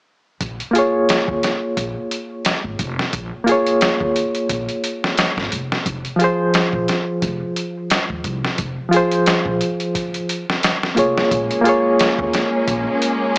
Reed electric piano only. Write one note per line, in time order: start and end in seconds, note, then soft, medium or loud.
0.71 3.42 A#3 medium
0.71 3.43 F4 medium
0.76 3.44 G#4 medium
0.76 3.46 C#5 medium
3.44 5.83 A#3 medium
3.44 5.84 F4 medium
3.49 5.85 G#4 medium
3.49 5.86 C#5 medium
6.16 8.87 F3 medium
6.16 8.89 F4 medium
6.21 8.90 G#4 medium
6.21 8.91 C5 loud
8.89 10.42 F3 medium
8.89 10.44 F4 medium
8.94 10.45 G#4 medium
8.94 10.46 C5 loud
10.95 11.60 A#3 medium
10.95 11.61 F4 medium
10.95 11.62 G#4 medium
10.99 11.63 C#5 medium
11.61 13.38 A#3 medium
11.61 13.38 F4 medium
11.66 13.38 G#4 medium
11.66 13.38 C#5 loud